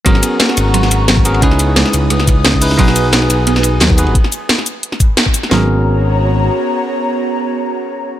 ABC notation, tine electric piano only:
X:1
M:4/4
L:1/8
Q:"Swing 16ths" 1/4=176
K:G#m
V:1 name="Tine electric piano"
[B,CFGA]6- [B,CFGA] [B,CFGA] | [CDEGB]6- [CDEGB] [CDEGB] | [B,DFGB]6- [B,DFGB] [B,DFGB] | z8 |
[B,CFGA]8- | [B,CFGA]8 |]